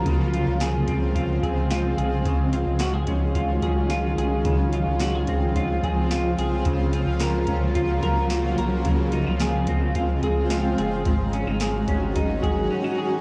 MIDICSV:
0, 0, Header, 1, 5, 480
1, 0, Start_track
1, 0, Key_signature, -5, "major"
1, 0, Tempo, 550459
1, 44, Time_signature, 4, 2, 24, 8
1, 11518, End_track
2, 0, Start_track
2, 0, Title_t, "Clean electric guitar"
2, 0, Program_c, 0, 27
2, 0, Note_on_c, 0, 61, 47
2, 0, Note_on_c, 0, 65, 45
2, 0, Note_on_c, 0, 70, 57
2, 51, Note_on_c, 0, 49, 67
2, 97, Note_off_c, 0, 65, 0
2, 99, Note_off_c, 0, 70, 0
2, 293, Note_on_c, 0, 65, 51
2, 530, Note_on_c, 0, 68, 60
2, 764, Note_off_c, 0, 61, 0
2, 767, Note_on_c, 0, 60, 57
2, 1001, Note_off_c, 0, 65, 0
2, 1004, Note_on_c, 0, 65, 59
2, 1245, Note_off_c, 0, 68, 0
2, 1248, Note_on_c, 0, 68, 58
2, 1484, Note_off_c, 0, 65, 0
2, 1487, Note_on_c, 0, 65, 53
2, 1722, Note_off_c, 0, 68, 0
2, 1726, Note_on_c, 0, 68, 57
2, 1954, Note_off_c, 0, 49, 0
2, 1964, Note_on_c, 0, 49, 76
2, 2014, Note_off_c, 0, 60, 0
2, 2201, Note_off_c, 0, 65, 0
2, 2205, Note_on_c, 0, 65, 48
2, 2442, Note_off_c, 0, 68, 0
2, 2446, Note_on_c, 0, 66, 63
2, 2562, Note_off_c, 0, 66, 0
2, 2562, Note_on_c, 0, 68, 41
2, 2687, Note_on_c, 0, 61, 51
2, 2919, Note_off_c, 0, 65, 0
2, 2923, Note_on_c, 0, 65, 57
2, 3155, Note_off_c, 0, 68, 0
2, 3165, Note_on_c, 0, 68, 60
2, 3401, Note_off_c, 0, 65, 0
2, 3404, Note_on_c, 0, 65, 49
2, 3644, Note_off_c, 0, 68, 0
2, 3648, Note_on_c, 0, 68, 54
2, 3872, Note_off_c, 0, 49, 0
2, 3882, Note_on_c, 0, 49, 73
2, 4126, Note_off_c, 0, 65, 0
2, 4129, Note_on_c, 0, 65, 49
2, 4368, Note_off_c, 0, 68, 0
2, 4372, Note_on_c, 0, 66, 55
2, 4488, Note_off_c, 0, 66, 0
2, 4488, Note_on_c, 0, 68, 43
2, 4606, Note_off_c, 0, 61, 0
2, 4610, Note_on_c, 0, 60, 52
2, 4845, Note_off_c, 0, 65, 0
2, 4849, Note_on_c, 0, 65, 49
2, 5080, Note_off_c, 0, 68, 0
2, 5090, Note_on_c, 0, 68, 58
2, 5326, Note_off_c, 0, 65, 0
2, 5329, Note_on_c, 0, 65, 54
2, 5558, Note_off_c, 0, 68, 0
2, 5568, Note_on_c, 0, 68, 52
2, 5795, Note_off_c, 0, 49, 0
2, 5805, Note_on_c, 0, 49, 75
2, 5854, Note_off_c, 0, 68, 0
2, 5855, Note_off_c, 0, 60, 0
2, 6039, Note_off_c, 0, 65, 0
2, 6043, Note_on_c, 0, 65, 49
2, 6284, Note_on_c, 0, 70, 61
2, 6525, Note_on_c, 0, 61, 52
2, 6755, Note_off_c, 0, 65, 0
2, 6759, Note_on_c, 0, 65, 58
2, 6990, Note_off_c, 0, 70, 0
2, 7000, Note_on_c, 0, 70, 60
2, 7238, Note_off_c, 0, 65, 0
2, 7241, Note_on_c, 0, 65, 49
2, 7473, Note_off_c, 0, 70, 0
2, 7484, Note_on_c, 0, 70, 57
2, 7711, Note_off_c, 0, 49, 0
2, 7721, Note_on_c, 0, 49, 71
2, 7772, Note_off_c, 0, 70, 0
2, 7956, Note_off_c, 0, 65, 0
2, 7959, Note_on_c, 0, 63, 55
2, 7985, Note_off_c, 0, 61, 0
2, 8080, Note_off_c, 0, 63, 0
2, 8080, Note_on_c, 0, 65, 49
2, 8202, Note_on_c, 0, 68, 69
2, 8444, Note_on_c, 0, 60, 57
2, 8673, Note_off_c, 0, 65, 0
2, 8683, Note_on_c, 0, 65, 54
2, 8920, Note_off_c, 0, 68, 0
2, 8923, Note_on_c, 0, 68, 57
2, 9151, Note_off_c, 0, 65, 0
2, 9161, Note_on_c, 0, 65, 50
2, 9401, Note_off_c, 0, 68, 0
2, 9404, Note_on_c, 0, 68, 58
2, 9643, Note_off_c, 0, 49, 0
2, 9647, Note_on_c, 0, 44, 67
2, 9691, Note_off_c, 0, 65, 0
2, 9692, Note_off_c, 0, 60, 0
2, 9884, Note_on_c, 0, 61, 52
2, 10003, Note_off_c, 0, 61, 0
2, 10003, Note_on_c, 0, 63, 43
2, 10121, Note_off_c, 0, 68, 0
2, 10125, Note_on_c, 0, 68, 65
2, 10363, Note_on_c, 0, 61, 51
2, 10591, Note_off_c, 0, 63, 0
2, 10601, Note_on_c, 0, 63, 52
2, 10828, Note_off_c, 0, 68, 0
2, 10839, Note_on_c, 0, 68, 57
2, 11075, Note_off_c, 0, 63, 0
2, 11079, Note_off_c, 0, 61, 0
2, 11079, Note_on_c, 0, 61, 51
2, 11198, Note_off_c, 0, 61, 0
2, 11198, Note_on_c, 0, 63, 47
2, 11310, Note_off_c, 0, 68, 0
2, 11320, Note_on_c, 0, 68, 54
2, 11518, Note_off_c, 0, 44, 0
2, 11518, Note_off_c, 0, 63, 0
2, 11518, Note_off_c, 0, 68, 0
2, 11518, End_track
3, 0, Start_track
3, 0, Title_t, "Ambient pad"
3, 0, Program_c, 1, 92
3, 0, Note_on_c, 1, 49, 78
3, 0, Note_on_c, 1, 53, 65
3, 0, Note_on_c, 1, 65, 76
3, 44, Note_on_c, 1, 60, 67
3, 48, Note_on_c, 1, 56, 67
3, 1929, Note_off_c, 1, 49, 0
3, 1930, Note_off_c, 1, 65, 0
3, 1932, Note_off_c, 1, 53, 0
3, 1945, Note_off_c, 1, 60, 0
3, 1972, Note_on_c, 1, 51, 70
3, 1972, Note_on_c, 1, 65, 73
3, 1973, Note_on_c, 1, 54, 65
3, 1973, Note_on_c, 1, 61, 64
3, 3869, Note_off_c, 1, 51, 0
3, 3869, Note_off_c, 1, 54, 0
3, 3869, Note_off_c, 1, 61, 0
3, 3876, Note_on_c, 1, 49, 76
3, 3878, Note_on_c, 1, 53, 59
3, 3880, Note_on_c, 1, 60, 63
3, 5771, Note_off_c, 1, 56, 0
3, 5783, Note_off_c, 1, 60, 0
3, 5803, Note_on_c, 1, 54, 70
3, 5804, Note_on_c, 1, 58, 64
3, 7693, Note_off_c, 1, 65, 0
3, 7704, Note_off_c, 1, 54, 0
3, 7705, Note_off_c, 1, 58, 0
3, 7718, Note_on_c, 1, 65, 79
3, 7723, Note_on_c, 1, 60, 68
3, 7725, Note_on_c, 1, 56, 70
3, 9605, Note_off_c, 1, 49, 0
3, 9606, Note_off_c, 1, 53, 0
3, 9622, Note_off_c, 1, 65, 0
3, 9624, Note_off_c, 1, 60, 0
3, 9638, Note_on_c, 1, 51, 65
3, 9641, Note_on_c, 1, 54, 62
3, 9641, Note_on_c, 1, 66, 83
3, 9643, Note_on_c, 1, 61, 61
3, 11518, Note_off_c, 1, 51, 0
3, 11518, Note_off_c, 1, 54, 0
3, 11518, Note_off_c, 1, 56, 0
3, 11518, Note_off_c, 1, 61, 0
3, 11518, Note_off_c, 1, 66, 0
3, 11518, End_track
4, 0, Start_track
4, 0, Title_t, "Analog synth bass"
4, 0, Program_c, 2, 38
4, 51, Note_on_c, 2, 37, 93
4, 390, Note_off_c, 2, 37, 0
4, 409, Note_on_c, 2, 37, 100
4, 749, Note_off_c, 2, 37, 0
4, 765, Note_on_c, 2, 37, 89
4, 1220, Note_off_c, 2, 37, 0
4, 1244, Note_on_c, 2, 37, 91
4, 1700, Note_off_c, 2, 37, 0
4, 1724, Note_on_c, 2, 36, 87
4, 1952, Note_off_c, 2, 36, 0
4, 1963, Note_on_c, 2, 37, 85
4, 2306, Note_off_c, 2, 37, 0
4, 2323, Note_on_c, 2, 37, 87
4, 2666, Note_off_c, 2, 37, 0
4, 2681, Note_on_c, 2, 37, 86
4, 3139, Note_off_c, 2, 37, 0
4, 3162, Note_on_c, 2, 37, 84
4, 3619, Note_off_c, 2, 37, 0
4, 3640, Note_on_c, 2, 36, 89
4, 3870, Note_off_c, 2, 36, 0
4, 3883, Note_on_c, 2, 37, 101
4, 4225, Note_off_c, 2, 37, 0
4, 4245, Note_on_c, 2, 37, 98
4, 4587, Note_off_c, 2, 37, 0
4, 4603, Note_on_c, 2, 37, 89
4, 5060, Note_off_c, 2, 37, 0
4, 5085, Note_on_c, 2, 37, 96
4, 5541, Note_off_c, 2, 37, 0
4, 5565, Note_on_c, 2, 36, 84
4, 5793, Note_off_c, 2, 36, 0
4, 5802, Note_on_c, 2, 37, 90
4, 6145, Note_off_c, 2, 37, 0
4, 6161, Note_on_c, 2, 37, 97
4, 6504, Note_off_c, 2, 37, 0
4, 6521, Note_on_c, 2, 37, 98
4, 6979, Note_off_c, 2, 37, 0
4, 7004, Note_on_c, 2, 37, 102
4, 7460, Note_off_c, 2, 37, 0
4, 7488, Note_on_c, 2, 36, 83
4, 7714, Note_off_c, 2, 36, 0
4, 7721, Note_on_c, 2, 37, 95
4, 8065, Note_off_c, 2, 37, 0
4, 8088, Note_on_c, 2, 37, 94
4, 8428, Note_off_c, 2, 37, 0
4, 8440, Note_on_c, 2, 37, 97
4, 8898, Note_off_c, 2, 37, 0
4, 8920, Note_on_c, 2, 37, 80
4, 9378, Note_off_c, 2, 37, 0
4, 9404, Note_on_c, 2, 30, 91
4, 9632, Note_off_c, 2, 30, 0
4, 9640, Note_on_c, 2, 32, 99
4, 9984, Note_off_c, 2, 32, 0
4, 10001, Note_on_c, 2, 32, 112
4, 10345, Note_off_c, 2, 32, 0
4, 10359, Note_on_c, 2, 32, 99
4, 10817, Note_off_c, 2, 32, 0
4, 10840, Note_on_c, 2, 32, 83
4, 11070, Note_off_c, 2, 32, 0
4, 11518, End_track
5, 0, Start_track
5, 0, Title_t, "Drums"
5, 49, Note_on_c, 9, 36, 94
5, 51, Note_on_c, 9, 42, 60
5, 136, Note_off_c, 9, 36, 0
5, 138, Note_off_c, 9, 42, 0
5, 292, Note_on_c, 9, 42, 40
5, 379, Note_off_c, 9, 42, 0
5, 525, Note_on_c, 9, 42, 62
5, 531, Note_on_c, 9, 38, 101
5, 612, Note_off_c, 9, 42, 0
5, 618, Note_off_c, 9, 38, 0
5, 764, Note_on_c, 9, 42, 46
5, 765, Note_on_c, 9, 36, 65
5, 851, Note_off_c, 9, 42, 0
5, 852, Note_off_c, 9, 36, 0
5, 1006, Note_on_c, 9, 36, 64
5, 1008, Note_on_c, 9, 42, 50
5, 1093, Note_off_c, 9, 36, 0
5, 1096, Note_off_c, 9, 42, 0
5, 1245, Note_on_c, 9, 36, 75
5, 1250, Note_on_c, 9, 42, 35
5, 1332, Note_off_c, 9, 36, 0
5, 1337, Note_off_c, 9, 42, 0
5, 1486, Note_on_c, 9, 42, 61
5, 1487, Note_on_c, 9, 38, 82
5, 1574, Note_off_c, 9, 38, 0
5, 1574, Note_off_c, 9, 42, 0
5, 1728, Note_on_c, 9, 42, 39
5, 1816, Note_off_c, 9, 42, 0
5, 1964, Note_on_c, 9, 36, 87
5, 1966, Note_on_c, 9, 42, 55
5, 2051, Note_off_c, 9, 36, 0
5, 2054, Note_off_c, 9, 42, 0
5, 2206, Note_on_c, 9, 42, 38
5, 2293, Note_off_c, 9, 42, 0
5, 2434, Note_on_c, 9, 42, 65
5, 2440, Note_on_c, 9, 38, 91
5, 2521, Note_off_c, 9, 42, 0
5, 2527, Note_off_c, 9, 38, 0
5, 2677, Note_on_c, 9, 42, 44
5, 2681, Note_on_c, 9, 36, 72
5, 2764, Note_off_c, 9, 42, 0
5, 2768, Note_off_c, 9, 36, 0
5, 2923, Note_on_c, 9, 36, 71
5, 2923, Note_on_c, 9, 42, 51
5, 3010, Note_off_c, 9, 36, 0
5, 3011, Note_off_c, 9, 42, 0
5, 3161, Note_on_c, 9, 36, 71
5, 3161, Note_on_c, 9, 42, 36
5, 3248, Note_off_c, 9, 36, 0
5, 3248, Note_off_c, 9, 42, 0
5, 3400, Note_on_c, 9, 38, 81
5, 3400, Note_on_c, 9, 42, 59
5, 3487, Note_off_c, 9, 38, 0
5, 3487, Note_off_c, 9, 42, 0
5, 3649, Note_on_c, 9, 42, 43
5, 3736, Note_off_c, 9, 42, 0
5, 3881, Note_on_c, 9, 42, 66
5, 3882, Note_on_c, 9, 36, 108
5, 3968, Note_off_c, 9, 42, 0
5, 3969, Note_off_c, 9, 36, 0
5, 4122, Note_on_c, 9, 42, 34
5, 4209, Note_off_c, 9, 42, 0
5, 4356, Note_on_c, 9, 42, 60
5, 4362, Note_on_c, 9, 38, 101
5, 4443, Note_off_c, 9, 42, 0
5, 4450, Note_off_c, 9, 38, 0
5, 4598, Note_on_c, 9, 42, 42
5, 4602, Note_on_c, 9, 36, 66
5, 4686, Note_off_c, 9, 42, 0
5, 4689, Note_off_c, 9, 36, 0
5, 4845, Note_on_c, 9, 36, 65
5, 4847, Note_on_c, 9, 42, 50
5, 4933, Note_off_c, 9, 36, 0
5, 4934, Note_off_c, 9, 42, 0
5, 5085, Note_on_c, 9, 36, 73
5, 5089, Note_on_c, 9, 42, 34
5, 5172, Note_off_c, 9, 36, 0
5, 5177, Note_off_c, 9, 42, 0
5, 5327, Note_on_c, 9, 38, 90
5, 5327, Note_on_c, 9, 42, 59
5, 5414, Note_off_c, 9, 38, 0
5, 5414, Note_off_c, 9, 42, 0
5, 5568, Note_on_c, 9, 42, 44
5, 5655, Note_off_c, 9, 42, 0
5, 5800, Note_on_c, 9, 42, 59
5, 5804, Note_on_c, 9, 36, 101
5, 5887, Note_off_c, 9, 42, 0
5, 5892, Note_off_c, 9, 36, 0
5, 6042, Note_on_c, 9, 42, 40
5, 6130, Note_off_c, 9, 42, 0
5, 6275, Note_on_c, 9, 42, 64
5, 6281, Note_on_c, 9, 38, 96
5, 6362, Note_off_c, 9, 42, 0
5, 6368, Note_off_c, 9, 38, 0
5, 6513, Note_on_c, 9, 42, 42
5, 6521, Note_on_c, 9, 36, 70
5, 6600, Note_off_c, 9, 42, 0
5, 6608, Note_off_c, 9, 36, 0
5, 6760, Note_on_c, 9, 42, 52
5, 6762, Note_on_c, 9, 36, 66
5, 6847, Note_off_c, 9, 42, 0
5, 6849, Note_off_c, 9, 36, 0
5, 7000, Note_on_c, 9, 42, 35
5, 7002, Note_on_c, 9, 36, 69
5, 7087, Note_off_c, 9, 42, 0
5, 7089, Note_off_c, 9, 36, 0
5, 7238, Note_on_c, 9, 38, 88
5, 7238, Note_on_c, 9, 42, 63
5, 7325, Note_off_c, 9, 38, 0
5, 7325, Note_off_c, 9, 42, 0
5, 7481, Note_on_c, 9, 42, 42
5, 7568, Note_off_c, 9, 42, 0
5, 7716, Note_on_c, 9, 42, 61
5, 7720, Note_on_c, 9, 36, 101
5, 7803, Note_off_c, 9, 42, 0
5, 7807, Note_off_c, 9, 36, 0
5, 7952, Note_on_c, 9, 42, 36
5, 8039, Note_off_c, 9, 42, 0
5, 8193, Note_on_c, 9, 42, 61
5, 8199, Note_on_c, 9, 38, 97
5, 8280, Note_off_c, 9, 42, 0
5, 8286, Note_off_c, 9, 38, 0
5, 8431, Note_on_c, 9, 42, 47
5, 8438, Note_on_c, 9, 36, 65
5, 8518, Note_off_c, 9, 42, 0
5, 8525, Note_off_c, 9, 36, 0
5, 8676, Note_on_c, 9, 42, 56
5, 8680, Note_on_c, 9, 36, 67
5, 8764, Note_off_c, 9, 42, 0
5, 8767, Note_off_c, 9, 36, 0
5, 8919, Note_on_c, 9, 36, 68
5, 8919, Note_on_c, 9, 42, 40
5, 9006, Note_off_c, 9, 42, 0
5, 9007, Note_off_c, 9, 36, 0
5, 9157, Note_on_c, 9, 42, 71
5, 9158, Note_on_c, 9, 38, 88
5, 9245, Note_off_c, 9, 38, 0
5, 9245, Note_off_c, 9, 42, 0
5, 9402, Note_on_c, 9, 42, 43
5, 9489, Note_off_c, 9, 42, 0
5, 9639, Note_on_c, 9, 42, 55
5, 9640, Note_on_c, 9, 36, 110
5, 9726, Note_off_c, 9, 42, 0
5, 9728, Note_off_c, 9, 36, 0
5, 9881, Note_on_c, 9, 42, 37
5, 9968, Note_off_c, 9, 42, 0
5, 10114, Note_on_c, 9, 42, 59
5, 10121, Note_on_c, 9, 38, 98
5, 10202, Note_off_c, 9, 42, 0
5, 10208, Note_off_c, 9, 38, 0
5, 10357, Note_on_c, 9, 42, 44
5, 10359, Note_on_c, 9, 36, 72
5, 10444, Note_off_c, 9, 42, 0
5, 10447, Note_off_c, 9, 36, 0
5, 10600, Note_on_c, 9, 42, 55
5, 10601, Note_on_c, 9, 36, 65
5, 10687, Note_off_c, 9, 42, 0
5, 10688, Note_off_c, 9, 36, 0
5, 10841, Note_on_c, 9, 36, 71
5, 10844, Note_on_c, 9, 42, 35
5, 10928, Note_off_c, 9, 36, 0
5, 10932, Note_off_c, 9, 42, 0
5, 11518, End_track
0, 0, End_of_file